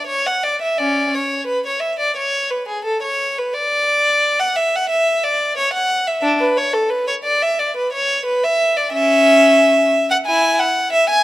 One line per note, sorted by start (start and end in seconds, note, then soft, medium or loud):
0.07 0.24 C#5 medium
0.26 0.43 F#5 medium
0.43 0.60 D5 medium
0.62 0.77 E5 medium
0.78 1.10 C#4 medium
0.78 1.12 D5 medium
1.14 1.47 C#5 medium
1.47 1.63 B4 medium
1.67 1.82 C#5 medium
1.80 1.97 E5 medium
2.00 2.15 D5 medium
2.17 2.49 C#5 medium
2.51 2.67 B4 medium
2.68 2.84 G#4 medium
2.85 3.01 A4 medium
3.03 3.35 C#5 medium
3.38 3.54 B4 medium
3.53 4.38 D5 medium
4.40 4.56 F#5 medium
4.56 4.73 E5 medium
4.76 4.91 F#5 medium
4.90 5.23 E5 medium
5.24 5.58 D5 medium
5.58 5.74 C#5 medium
5.73 6.07 F#5 medium
6.07 6.24 E5 medium
6.23 6.40 D4 medium
6.40 6.58 B4 medium
6.57 6.75 C#5 medium
6.73 6.91 A4 medium
6.90 7.08 B4 medium
7.08 7.15 C#5 medium
7.24 7.41 D5 medium
7.42 7.59 E5 medium
7.59 7.76 D5 medium
7.77 7.93 B4 medium
7.92 8.25 C#5 medium
8.26 8.42 B4 medium
8.44 8.76 E5 medium
8.77 8.93 D5 medium
8.92 9.88 C#4 medium
8.92 10.06 E5 loud
10.11 10.17 F#5 medium
10.26 10.57 E4 medium
10.26 10.59 G#5 medium
10.59 10.93 F#5 medium
10.93 11.09 E5 medium
11.10 11.23 G#5 medium